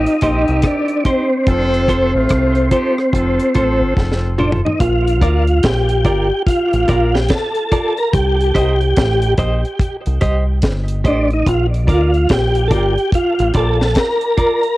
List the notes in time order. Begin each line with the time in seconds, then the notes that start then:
Already playing: C4 D#4 G4
0.06 closed hi-hat
0.21 A#1 D#3 C4 D#4 G4 C5, kick, closed hi-hat
0.48 C2, closed hi-hat
0.62 D4, kick, cross-stick, closed hi-hat
0.88 closed hi-hat
1.05 C4 D#4 G4 C5, kick, closed hi-hat
1.47 F1 C4 F4 A4, kick, closed hi-hat
1.74 closed hi-hat
1.88 F4 A4 C5, kick, closed hi-hat
2.14 A1 A3 C4 F4
2.29 C2, kick, cross-stick, closed hi-hat
2.55 closed hi-hat
2.71 C4 D#4 F4 G4 A4 C5, kick, closed hi-hat
2.98 cross-stick
3.13 F1 C4 F4 A4, kick, closed hi-hat
3.40 closed hi-hat
3.55 A1 C4 F4 A4 C5, kick, closed hi-hat
3.81 G1
3.97 F1, kick, snare
4.12 snare
4.38 D4 F4 A4 C5, mid tom
4.52 floor tom
4.65 D#4, floor tom
4.80 A#1 F4, kick, closed hi-hat
5.08 closed hi-hat
5.21 D2 F4 A#4 D5, kick, closed hi-hat
5.47 closed hi-hat
5.63 A#1 G4, kick, snare, closed hi-hat
5.89 closed hi-hat
6.05 G1 F4 A#4 D5, kick, closed hi-hat
6.46 F4, kick, closed hi-hat
6.73 A1, closed hi-hat
6.88 A#1 F4 A#4 D5, kick, closed hi-hat
7.14 G4, snare
7.29 A4, kick, snare, closed hi-hat
7.55 closed hi-hat
7.72 F4 A#4 D5, kick, closed hi-hat
7.97 A#4, closed hi-hat
8.13 C2 G4, kick, closed hi-hat
8.41 closed hi-hat
8.55 C2 G4 C5 D#5, kick, closed hi-hat
8.81 closed hi-hat
8.96 A1, kick, snare, closed hi-hat
9.22 closed hi-hat
9.38 A#1 G4 C5 D#5, kick, closed hi-hat
9.65 closed hi-hat
9.80 kick, closed hi-hat
10.06 C2, closed hi-hat
10.21 C2 G4 C5 D#5, kick, closed hi-hat
10.62 G1, kick, snare, closed hi-hat
10.88 closed hi-hat
11.04 A1 D4 G4 C5 D#5, kick, closed hi-hat
11.30 D#4, closed hi-hat
11.46 A#1 F4, kick, closed hi-hat
11.74 closed hi-hat
11.87 D2 F4 A#4 D5, kick, closed hi-hat
12.14 closed hi-hat
12.29 A#1 G4, kick, snare, closed hi-hat
12.55 closed hi-hat
12.68 G1 F4 A4 A#4 D5, kick, closed hi-hat
12.74 G4
12.98 closed hi-hat
13.12 F4, kick, closed hi-hat
13.39 A1, closed hi-hat
13.54 A#1 F4 A4 A#4 D5, kick, closed hi-hat
13.81 snare
13.95 A#4, kick, snare, closed hi-hat
14.21 closed hi-hat
14.37 F4 A#4 D5, kick, closed hi-hat
14.63 closed hi-hat